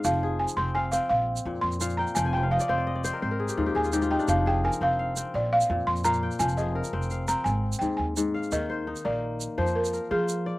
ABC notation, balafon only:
X:1
M:12/8
L:1/8
Q:3/8=113
K:Fdor
V:1 name="Balafon"
f2 a c' a f f2 z c'2 b | a g f f2 z4 a2 g | f g a f2 z d f2 c' b2 | a e z3 b a2 g a z2 |
e3 d3 c B2 A3 |]